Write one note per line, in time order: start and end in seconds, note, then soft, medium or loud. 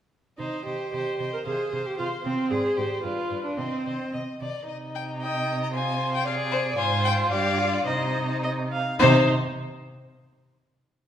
0.38 0.47 C3 soft
0.38 0.64 D#4 soft
0.38 0.65 C5 soft
0.38 0.65 D#5 soft
0.65 0.74 C3 soft
0.65 0.92 G4 soft
0.65 0.92 C5 soft
0.65 0.91 D#5 soft
0.92 1.01 C3 soft
0.92 1.32 G4 medium
0.92 1.19 C5 soft
0.92 1.18 D#5 soft
1.18 1.28 C3 soft
1.18 1.45 C5 soft
1.18 1.44 D#5 soft
1.33 1.38 A#4 medium
1.45 1.54 C3 soft
1.45 1.88 G#4 medium
1.45 1.71 C5 soft
1.45 1.71 F5 soft
1.72 1.81 C3 soft
1.72 1.97 C5 soft
1.72 1.97 F5 soft
1.86 1.98 G4 soft
1.98 2.07 C3 soft
1.98 2.06 F4 medium
1.98 2.23 C5 soft
1.98 2.24 F5 soft
2.24 2.33 C3 soft
2.24 2.52 C4 medium
2.24 2.50 C5 soft
2.24 2.50 F5 soft
2.51 2.59 G#2 medium
2.51 2.78 G#4 medium
2.51 2.77 C5 soft
2.51 2.76 D5 soft
2.77 2.86 G#2 soft
2.77 3.03 G4 medium
2.77 3.02 C5 soft
2.77 3.03 D5 soft
3.03 3.12 G2 soft
3.03 3.43 F4 medium
3.03 3.30 B4 soft
3.03 3.30 D5 soft
3.30 3.39 G2 soft
3.30 3.57 B4 soft
3.30 3.57 D5 soft
3.44 3.59 D4 soft
3.57 3.66 C3 soft
3.57 4.13 C4 soft
3.57 3.85 C5 soft
3.57 3.85 D#5 soft
3.86 3.94 C3 soft
3.86 4.13 C5 soft
3.86 4.13 D#5 soft
4.13 4.22 C3 soft
4.13 4.21 D#5 soft
4.13 4.41 D#5 soft
4.41 4.49 C3 soft
4.41 4.67 D5 soft
4.41 4.68 D#5 soft
4.68 6.74 C3 medium
4.68 5.70 D#4 soft
4.68 4.76 D#5 medium
4.95 5.03 G5 medium
5.22 5.70 D#5 medium
5.22 5.61 G5 medium
5.63 5.68 A#5 medium
5.74 6.25 F4 soft
5.74 6.27 C5 medium
5.74 6.13 G#5 medium
6.15 6.26 G5 medium
6.26 6.77 G#4 medium
6.26 6.80 D5 medium
6.26 6.35 F5 medium
6.52 6.60 C5 medium
6.77 7.27 G#2 medium
6.77 7.33 F4 medium
6.77 7.30 C5 medium
6.77 7.04 G#5 medium
7.04 7.12 G5 loud
7.31 7.85 G2 medium
7.31 7.59 G4 medium
7.31 7.85 D5 medium
7.31 7.74 F5 medium
7.58 7.88 F4 medium
7.73 7.85 D5 medium
7.85 8.77 C3 medium
7.85 8.79 D#4 medium
7.85 8.42 C5 medium
7.85 8.37 D#5 medium
8.43 8.51 D#5 medium
8.72 8.98 F5 medium
8.99 9.30 C3 loud
8.99 9.30 D#4 medium
8.99 9.30 C5 loud
8.99 9.30 C5 medium